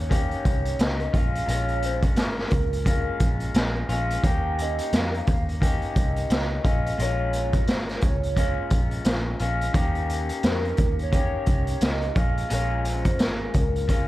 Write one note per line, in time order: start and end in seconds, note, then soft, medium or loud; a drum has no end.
0.00 0.32 D#2 medium
0.00 0.10 C#4 medium
0.00 0.10 G4 medium
0.00 0.84 C#5 loud
0.09 1.13 D#3 medium
0.09 1.15 A#3 medium
0.09 1.14 C#4 medium
0.09 1.13 G4 medium
0.09 kick medium
0.09 closed hi-hat medium
0.31 closed hi-hat soft
0.45 0.73 C2 medium
0.45 kick medium
0.45 closed hi-hat medium
0.65 closed hi-hat soft
0.79 1.07 C#2 medium
0.79 1.18 D#5 medium
0.79 snare loud
0.79 closed hi-hat medium
1.00 closed hi-hat soft
1.13 1.41 A#1 medium
1.13 1.47 G#3 soft
1.13 1.48 C#4 soft
1.13 1.48 F4 medium
1.13 1.51 F5 medium
1.13 kick loud
1.13 closed hi-hat medium
1.35 closed hi-hat medium
1.46 2.17 A#1 medium
1.46 2.84 A#2 medium
1.46 2.85 G#3 medium
1.46 2.86 C#4 medium
1.46 2.86 F4 medium
1.46 1.84 C#5 loud
1.46 closed hi-hat medium
1.68 closed hi-hat soft
1.82 1.99 C5 medium
1.82 closed hi-hat medium
2.02 kick medium
2.02 closed hi-hat medium
2.16 2.45 G#1 medium
2.16 snare medium
2.16 closed hi-hat medium
2.20 3.52 A#4 medium
2.39 snare soft
2.50 3.07 C#2 medium
2.50 kick medium
2.50 closed hi-hat medium
2.73 closed hi-hat soft
2.85 3.89 A#2 medium
2.85 3.89 G#3 medium
2.85 3.89 C#4 medium
2.85 3.88 F4 medium
2.85 kick medium
2.85 closed hi-hat medium
3.20 3.48 A#1 medium
3.20 kick medium
3.20 closed hi-hat medium
3.40 closed hi-hat soft
3.54 3.82 A#1 medium
3.54 snare loud
3.54 closed hi-hat medium
3.89 4.17 A#1 medium
3.89 4.24 G#3 medium
3.89 4.24 C#4 medium
3.89 4.24 F4 medium
3.89 closed hi-hat medium
4.10 closed hi-hat soft
4.23 4.79 D#2 medium
4.23 5.59 D#3 medium
4.23 5.61 A#3 medium
4.23 5.62 C#4 medium
4.23 5.62 G4 medium
4.23 4.63 G5 loud
4.23 kick loud
4.23 closed hi-hat medium
4.58 4.97 D#5 medium
4.58 closed hi-hat medium
4.78 closed hi-hat medium
4.92 5.20 F2 medium
4.92 5.28 F5 loud
4.92 snare medium
4.92 closed hi-hat medium
5.14 closed hi-hat soft
5.27 5.82 D#2 medium
5.27 5.44 F5 medium
5.27 kick medium
5.27 closed hi-hat medium
5.49 closed hi-hat soft
5.61 6.64 D#3 medium
5.61 6.66 A#3 medium
5.61 6.65 C#4 medium
5.61 6.63 G4 medium
5.61 7.03 D#5 loud
5.61 kick medium
5.61 closed hi-hat medium
5.81 closed hi-hat soft
5.96 6.24 C2 medium
5.96 kick medium
5.96 closed hi-hat medium
6.16 closed hi-hat soft
6.30 6.58 C#2 medium
6.30 snare loud
6.30 closed hi-hat medium
6.64 6.92 A#1 medium
6.64 6.98 G#3 soft
6.64 6.99 C#4 medium
6.64 6.99 F4 medium
6.64 kick loud
6.64 closed hi-hat medium
6.86 closed hi-hat medium
6.98 7.68 A#1 medium
6.98 8.35 A#2 medium
6.98 8.36 G#3 medium
6.98 8.38 C#4 medium
6.98 8.37 F4 medium
6.98 9.41 C#5 medium
6.98 closed hi-hat medium
7.33 closed hi-hat medium
7.53 kick medium
7.53 closed hi-hat soft
7.67 7.95 G#1 medium
7.67 snare medium
7.67 closed hi-hat medium
7.89 snare soft
7.89 closed hi-hat soft
8.01 8.58 C#2 medium
8.01 kick medium
8.01 closed hi-hat medium
8.23 closed hi-hat soft
8.36 9.40 A#2 medium
8.36 9.40 G#3 medium
8.36 9.41 C#4 medium
8.36 9.39 F4 medium
8.36 kick medium
8.36 closed hi-hat medium
8.70 8.99 A#1 medium
8.70 kick medium
8.70 closed hi-hat medium
8.91 closed hi-hat soft
9.04 9.33 A#1 medium
9.04 snare loud
9.04 closed hi-hat medium
9.39 9.68 A#1 medium
9.39 9.74 G#3 soft
9.39 9.75 C#4 soft
9.39 9.74 F4 soft
9.39 closed hi-hat medium
9.61 closed hi-hat soft
9.73 10.30 D#2 medium
9.73 11.11 D#3 medium
9.73 11.12 A#3 medium
9.73 11.13 C#4 medium
9.73 11.13 G4 medium
9.73 kick loud
9.73 closed hi-hat medium
9.95 closed hi-hat soft
10.09 closed hi-hat medium
10.29 closed hi-hat medium
10.43 10.71 F2 medium
10.43 snare medium
10.43 closed hi-hat medium
10.47 10.97 A#4 medium
10.65 closed hi-hat soft
10.77 11.33 D#2 medium
10.77 kick medium
10.77 closed hi-hat medium
10.99 11.86 C#5 medium
10.99 closed hi-hat soft
11.12 12.16 D#3 medium
11.12 12.17 A#3 medium
11.12 12.16 C#4 medium
11.12 12.15 G4 medium
11.12 kick medium
11.12 closed hi-hat medium
11.46 11.75 C2 medium
11.46 kick medium
11.46 closed hi-hat medium
11.67 closed hi-hat soft
11.81 12.09 C#2 medium
11.81 12.17 D#5 loud
11.81 snare loud
11.81 closed hi-hat medium
12.02 closed hi-hat soft
12.15 12.44 A#1 medium
12.15 12.49 G#3 soft
12.15 12.50 C#4 soft
12.15 12.50 F4 soft
12.15 kick loud
12.15 closed hi-hat medium
12.20 12.55 F5 medium
12.37 closed hi-hat medium
12.49 13.20 A#1 medium
12.49 13.87 A#2 medium
12.49 13.88 G#3 medium
12.49 13.89 C#4 medium
12.49 13.89 F4 medium
12.49 closed hi-hat medium
12.54 12.87 C#5 loud
12.85 13.23 C5 medium
12.85 closed hi-hat medium
13.05 kick medium
13.05 closed hi-hat soft
13.19 13.47 G#1 medium
13.19 14.08 A#4 medium
13.19 snare medium
13.19 closed hi-hat medium
13.54 14.08 C#2 medium
13.54 kick medium
13.54 closed hi-hat medium
13.76 closed hi-hat soft
13.88 14.08 A#2 soft
13.88 14.08 G#3 medium
13.88 14.08 C#4 medium
13.88 14.08 F4 medium
13.88 kick medium
13.88 closed hi-hat medium